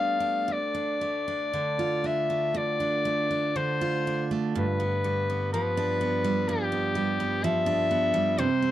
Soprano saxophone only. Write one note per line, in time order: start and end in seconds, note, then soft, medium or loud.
0.00 0.54 F5 medium
0.53 2.08 D5 medium
2.07 2.59 E5 medium
2.57 3.58 D5 medium
3.56 4.29 C5 medium
4.57 5.49 B4 medium
5.53 6.50 B4 medium
6.48 7.45 G4 medium
7.44 8.40 E5 medium
8.39 8.71 C5 medium